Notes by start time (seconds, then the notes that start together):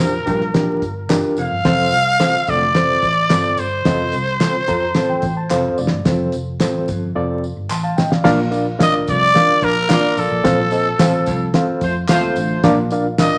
Already playing: F2 A#2 A#4
0.00 D4 F4 G4 C5, clap, closed hi-hat, tambourine
0.26 A#1 G2 D4 F4 G4 A#4, kick, closed hi-hat, tambourine
0.41 snare
0.54 A#1 D4 F4 G4 A#4, snare, closed hi-hat, tambourine
0.82 G1, kick, closed hi-hat, tambourine
1.09 G1 D4 F4 G4 A#4, snare, clap, closed hi-hat, tambourine
1.37 F1 F2 F5, closed hi-hat, tambourine
1.52 G1
1.65 F1 F2 C4 F4 A4 C5, kick, snare, closed hi-hat, tambourine
1.91 C2, closed hi-hat, tambourine
2.20 C4 F4 A4 C5, snare, clap, closed hi-hat, tambourine
2.47 F1 D2 C4 F4 A4 D5, kick, closed hi-hat, tambourine
2.62 snare
2.75 C4 F4 A4 C5, snare, closed hi-hat, tambourine
3.02 A1, kick, closed hi-hat, tambourine
3.30 G1 C4 F4 A4 D5, snare, clap, closed hi-hat, tambourine
3.57 G1 C5, closed hi-hat, tambourine
3.85 F1 F2 C4 F4 A4 D#5, kick, snare, closed hi-hat, tambourine
4.12 C2, closed hi-hat, tambourine
4.40 C4 F4 A4 C5, snare, clap, closed hi-hat, tambourine
4.67 F2 C4 F4 A4 C5 A#5, kick, closed hi-hat, tambourine
4.95 A1 C4 F4 A4 C5 A5, snare, closed hi-hat, tambourine
5.10 G5
5.22 A1, kick, closed hi-hat, tambourine
5.37 A5
5.50 F1 C4 F4 A4 C5 F5, snare, clap, tambourine
5.68 mid tom
5.78 F1 D2 D5, tambourine
5.87 snare
5.92 G1
6.05 F1 F2 C4 F4 A4 C5, kick, snare, closed hi-hat, tambourine
6.32 F1, closed hi-hat, tambourine
6.60 A1 C4 F4 A4 C5, snare, clap, closed hi-hat, tambourine
6.88 G1 F2, kick, closed hi-hat, tambourine
7.15 F1 C4 F4 A4 D5
7.44 tambourine
7.57 G1
7.70 A1 A5 C6, clap, tambourine
7.83 F5 A5
7.97 A1 D#5 G5, snare, tambourine
8.11 D5 F5, snare
8.24 A#1 A#2 D4 F4 A#4 D5 F5, kick, snare, crash, tambourine
8.51 D4 F4 A#4 D5 F5, closed hi-hat, tambourine
8.79 D2 D4 F4 A#4 D5 D#5 F5, snare, clap, closed hi-hat, tambourine
9.07 C2 F2 D5, kick, closed hi-hat, tambourine
9.35 D4 F4 A#4 D5 F5, snare, closed hi-hat
9.49 muted fingered electric bass stroke
9.62 A#1 F3 D4 A#4, kick, closed hi-hat, tambourine
9.88 A#3 D4 F4 A#4 D5 F5, snare, clap, closed hi-hat, tambourine
10.17 A#1 A4, closed hi-hat, tambourine
10.31 A#1
10.44 A#1 F2 A#2 C4 F4 A4 C5 F5, kick, snare, closed hi-hat, tambourine
10.71 C4 F4 A4 C5 D#5, closed hi-hat, tambourine
10.99 A1 C4 F4 A4 C5 F5, snare, clap, closed hi-hat, tambourine
11.26 C2 F2, kick, closed hi-hat, tambourine
11.54 C4 F4 A4 C5 F5, snare, closed hi-hat
11.69 muted fingered electric bass stroke
11.81 F2 A3 F4 C5, kick, closed hi-hat, tambourine
12.09 D#2 A3 C4 F4 A4 C5 F5, snare, clap, closed hi-hat, tambourine
12.36 A1 D2, closed hi-hat, tambourine
12.63 A#1 A#2 D4 F4 A#4 D5 F5, kick, snare, closed hi-hat, tambourine
12.91 D4 F4 A#4 D5 F5, closed hi-hat, tambourine
13.18 D2 D4 F4 A#4 D5 D#5 F5, snare, clap, closed hi-hat, tambourine